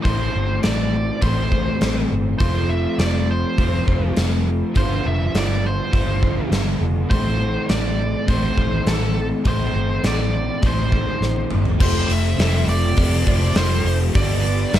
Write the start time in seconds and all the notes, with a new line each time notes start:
0.01 A1 A2 E3 A3 C4 E4 C5, kick
0.05 open hi-hat
0.35 G1
0.63 A1 D5, snare, open hi-hat
1.21 A1 A2 E3 A3 C4 E4 C5, kick, open hi-hat
1.52 kick
1.81 A1, snare, open hi-hat
2.11 G1
2.38 F1 F3 A3 C4 C5, kick, open hi-hat
2.43 F4
2.69 E5
2.98 F1 D5, snare, open hi-hat
3.31 C5
3.58 F1 F3 A3 C4 F4, kick, open hi-hat
3.88 F1, kick
4.16 F1, snare, open hi-hat
4.74 G1 G2 D3 F3 B3 F4 C5, kick, open hi-hat
5.06 F1 E5
5.34 G1, snare, open hi-hat
5.38 D5
5.66 C5
5.90 G1 G2 D3 F3 B3 F4, kick, open hi-hat
6.23 kick
6.51 G1, snare, open hi-hat
6.80 F1
7.09 A1 A2 E3 A3 C4 E4 C5, kick, open hi-hat
7.69 A1 D5, snare, open hi-hat
8.27 A1 A2 E3 A3 C4 E4 C5, kick, open hi-hat
8.57 A1, kick
8.86 A1 A4, snare, open hi-hat
9.44 A1 A2 E3 A3 C4 E4 C5, kick, open hi-hat
9.73 G1
10.03 A1 D5, snare, open hi-hat
10.62 A1 A2 E3 A3 C4 E4, kick, open hi-hat
10.66 C5
10.92 kick
11.21 A1, snare
11.36 high tom
11.50 G1, mid tom
11.65 floor tom
11.79 F1 F2 C3 F3 A3 C4 C5, kick, crash
12.09 F1 E5, open hi-hat
12.38 F1 C3 F3 A3 C4, snare, open hi-hat
12.67 F1 D5, open hi-hat
12.96 F1 F2 C3 F3 A3 C4, kick, open hi-hat
13.26 F1 F3 A3 C4, kick, open hi-hat
13.54 F1 C3 F3 A3 C4 C5, snare, open hi-hat
13.85 F1, open hi-hat
14.13 G1 G2 D3 G3 B3 D4 D5, kick, open hi-hat
14.45 open hi-hat
14.72 G1 D3 G3 B3 D4 E5, snare, open hi-hat